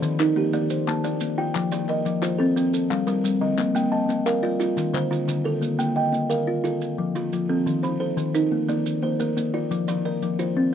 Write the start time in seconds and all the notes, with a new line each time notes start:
Already playing: A4 C5 D5
0.03 D#3, clap, maracas
0.19 D#4 A#4, clap, maracas
0.36 A#3 G4
0.53 A#3 D5, maracas
0.70 C5, maracas
0.88 A#3 A5, clap
1.04 A#3 D5, clap, maracas
1.20 A#3, maracas
1.38 F4 G5
1.55 F3, clap, maracas
1.72 F3 D5, maracas
1.89 A#4 D#5, clap
2.06 F3, clap, maracas
2.22 F4 C5, clap, maracas
2.38 C4 A4
2.56 C4, maracas
2.74 A4, maracas
2.90 G3 F5, clap
3.07 G3 A#4, clap, maracas
3.24 G3, maracas
3.41 D3 D#5
3.58 A#3, clap, maracas
3.75 A#3 G5, maracas
3.92 D#5 A5
4.09 A#3, clap, maracas
4.26 A#4 F5, clap, maracas
4.43 F4 D5, clap
4.60 F4, clap, maracas
4.77 D#3, clap, maracas
4.94 D3 C5, clap
5.11 D3 F4, maracas
5.28 D3, clap, maracas
5.44 A4 A#4
5.61 A#3, maracas
5.79 A#3 G5, maracas
5.96 D#5 G5
6.13 A#3, maracas
6.30 A#4 F5, maracas
6.47 F4
6.64 F4 A4, maracas
6.82 maracas
6.98 F3
7.15 F3 F4, maracas
7.33 F3, maracas
7.49 C4 A4
7.67 D#3, maracas
7.83 D#3 C5, maracas
8.00 A4 C5
8.17 D#3, maracas
8.34 D#4 A#4, maracas
8.52 A#3
8.69 A#3 D5, maracas
8.86 maracas
9.03 A#3 C5
9.20 A#3 A#4, maracas
9.37 A#3, maracas
9.54 F4 D5
9.71 F3, maracas
9.88 F3 D5, maracas
10.05 A#4 D5
10.22 F3, maracas
10.39 F4 C5, maracas
10.57 C4